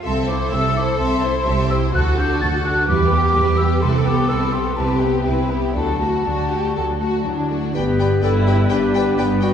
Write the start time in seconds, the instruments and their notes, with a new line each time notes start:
0.05 double bass section C2, viola section C4, cello section A4, violin section A4 E5, flute C6
0.28 viola section E4, violin section C5, flute D6
0.52 double bass section C2, viola section C4, violin section A4 E5, flute E6
0.76 viola section E4, violin section C5, flute D6
0.99 double bass section C2, viola section C4, violin section A4 E5, flute C6
1.23 viola section E4, violin section C5
1.46 double bass section C2, viola section C4, cello section G4, violin section A4 E5
1.70 viola section E4, violin section C5, flute E6
1.94 double bass section D2, cello section F#4, viola section F#4, violin section F#4 A4, flute F#6
2.17 viola section D4, violin section F#4 A4, flute G6
2.41 double bass section D2, violin section F#4 A4, viola section F#4, flute A6
2.65 viola section D4, violin section F#4 A4, flute F#6
2.87 double bass section E2, viola section G3, violin section E4 B4, cello section G4, flute D6
3.10 viola section B3, violin section G4
3.14 violin section G4
3.34 double bass section E2, viola section G3, violin section E4 B4
3.56 viola section B3, violin section G4, flute E6
3.82 double bass section C2, viola section C4, violin section E4 B4, cello section A4, flute C6
4.05 viola section B3, violin section C4 G4, flute D6
4.29 double bass section C2, viola section C4, violin section E4 B4, flute E6
4.51 viola section B3, violin section C4 G4, flute C6
4.76 double bass section C2, viola section C4, violin section E4 B4, cello section G4, flute A5
4.99 viola section B3, violin section C4 G4, flute G5
5.25 double bass section C2, viola section C4, violin section E4 B4, cello section E4
5.49 viola section B3, violin section C4 G4, flute B5
5.75 double bass section D2, viola section F#3, violin section D4 A4, cello section F#4, flute A5
6.01 viola section A3, violin section F#4
6.27 double bass section D2, viola section F#3, violin section D4 F#4
6.51 viola section A3, violin section F#4 G4
6.76 double bass section D2, viola section F#3, violin section D4 A4
7.00 viola section A3, violin section F#4
7.25 double bass section D2, viola section F#3, violin section D4, clarinet E4
7.50 viola section A3, violin section F#4
7.74 double bass section G1, cello section G2, french horn section B3 D4, viola section B3, clarinet G4, violin section B4 D5 G5, oboe B4, flute D5
7.99 violin section B4 D5 G5
8.23 double bass section G1, cello section G2, viola section E4, clarinet A4, violin section B4 D5 G5
8.47 clarinet G4, violin section B4 D5 G5
8.70 double bass section G1, cello section G2, viola section D4, clarinet G4, violin section B4 D5 G5
8.95 violin section B4 D5 G5
9.18 double bass section G1, cello section G2, viola section B3, clarinet D4, violin section B4 D5 G5
9.42 clarinet F#4, violin section B4 D5 G5